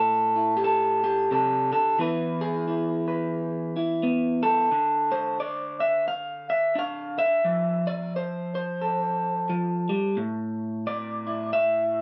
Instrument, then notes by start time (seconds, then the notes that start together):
clean electric guitar
Already playing: A2 A4
0.36 E4
0.57 G4
0.64 A4
1.04 G4
1.31 C3 A4
1.72 D3 A4
1.99 E3 B3 E4 B4
2.41 G#4
2.68 E4
3.08 B4
3.76 E4
4.03 B3
4.43 A4
4.71 D3
5.12 C5
5.40 D5
5.80 E5
6.08 F5
6.50 E5
6.75 D4 F5
7.19 E5
7.45 F3
7.87 D5
8.16 C5
8.55 C5
8.81 A4
9.50 F3
9.89 G3
10.17 A2
10.87 D5
11.27 E4
11.53 E5